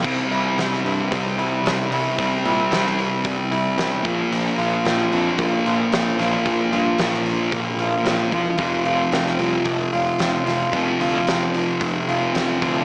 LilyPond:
<<
  \new Staff \with { instrumentName = "Clean electric guitar" } { \time 4/4 \key c \mixolydian \tempo 4 = 112 c8 e'8 c'8 e8 g8 e'8 c'8 e'8 | c8 e'8 c'8 e8 g8 e'8 c'8 bes,8 | bes,8 f'8 c'8 d8 bes8 f'8 c'8 f'8 | bes,8 f'8 c'8 d8 bes8 f'8 c'8 f'8 |
f,8 f'8 c'8 f8 a8 f'8 c'8 f'8 | f,8 f'8 c'8 f8 a8 f'8 c'8 f'8 | }
  \new Staff \with { instrumentName = "Distorted electric guitar" } { \clef bass \time 4/4 \key c \mixolydian <c g c'>1 | <c g c'>2.~ <c g c'>8 <bes, f bes>8~ | <bes, f bes>2.~ <bes, f bes>8 <bes, f bes>8~ | <bes, f bes>2.~ <bes, f bes>8 r8 |
<f, c f>1 | <f, c f>1 | }
  \new Staff \with { instrumentName = "Picked electric bass" } { \clef bass \time 4/4 \key c \mixolydian c,8 c,8 c,8 g,8 c,8 c,8 c,8 c,8 | c,8 bes,8 c,4 c,8 c,8 c,8 bes,,8 | bes,,8 bes,,8 bes,,8 f,8 bes,,8 bes,,8 bes,,8 bes,,8 | bes,,8 g,8 bes,,4 bes,,8 bes,,8 bes,,8 e,,8 |
f,,8 f,,8 f,,8 c,8 f,,8 f,,8 f,,8 f,,8 | f,,8 d,8 f,,4 f,,8 f,,8 f,,8 d,8 | }
  \new DrumStaff \with { instrumentName = "Drums" } \drummode { \time 4/4 <cymc bd>8 hho8 <hho sn>16 sn16 hho8 <hho bd>8 hho8 <hho sn>8 hho8 | <hho bd>8 hho8 <hho sn>16 sn16 hho8 <hho bd>8 hho8 <hho sn>8 <hho bd>8 | hho8 hho8 <hho sn>8 hho8 <hho bd>8 hho8 <hho sn>8 <hho sn>8 | <hho bd>8 hho8 <hho sn>16 sn16 hho8 <hho bd>8 hho8 <hho sn>8 <hho bd>8 |
<hho bd>8 hho8 <hho sn>16 sn16 hho8 <hho bd>8 hho8 <hho sn>8 <hho sn>8 | <hho bd>8 hho8 <hho sn>8 hho8 <hho bd>8 hho8 <hho sn>8 <hho bd>8 | }
>>